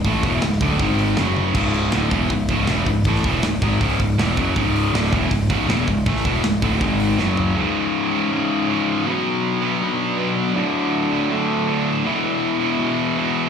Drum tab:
CC |----------------|x---------------|----------------|----------------|
HH |o-o-o-o-o-o-o---|--o-o-o-o-o-o-o-|o-o-o---o-o-o-o-|o-o-o-o-o-o-o-o-|
SD |----oo------o---|----o-------o---|-o--o-------o---|----oo------o---|
T1 |--------------o-|----------------|----------------|----------------|
FT |----------------|----------------|----------------|----------------|
BD |o-o---o-o-------|o-----o-o-o---o-|o-o---o-o-o---o-|o-----o-o-o---o-|

CC |----------------|----------------|----------------|----------------|
HH |o-o-o-o-o-o-----|----------------|----------------|----------------|
SD |-o--o-------o---|----------------|----------------|----------------|
T1 |----------------|----------------|----------------|----------------|
FT |--------------o-|----------------|----------------|----------------|
BD |o-o---o-o-------|----------------|----------------|----------------|

CC |----------------|
HH |----------------|
SD |----------------|
T1 |----------------|
FT |----------------|
BD |----------------|